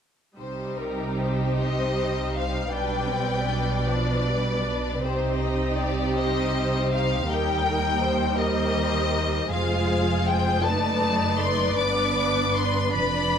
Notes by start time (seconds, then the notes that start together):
0.38 C2 C3 G3 D#4 G4 C5
0.78 A#4
1.20 C5
1.59 G3 D#5
2.36 F5
2.72 B1 B2 G3 D4 B4 D5 G5
3.10 C4
3.48 D4
3.87 F3 B4 D5
4.27 G3
4.64 D4
5.02 C2 C3 C4 D#4 G4 C5
5.39 D#5
5.77 D5
6.15 G3 C5 D#5
6.93 F5
7.27 D#2 G3 D#4 G4 A#4 G5
7.66 A#4
8.01 C5
8.38 G4 A#4 C5 D#5
9.50 F1 F2 G#3 F4 G#4 C5 F5
10.27 G5
10.63 F#1 F#2 A3 D#4 B4 D5 A5
11.39 C6
11.76 G1 G2 B3 D4 D6
12.55 C6
12.91 F1 F2 D4 D5 B5